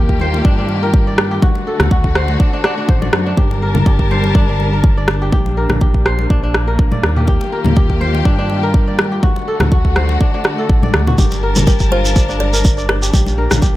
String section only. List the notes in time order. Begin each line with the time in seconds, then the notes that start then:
Already playing: D#3 A#3 F4 G4
1.43 D3 A3 D4 F#4
3.37 G3 A#4 A5
5.33 A#3
7.28 D#3 F4 G4
9.23 D3 A3 D4 F#4
11.18 G3 D4 A#4 A5
13.14 A#3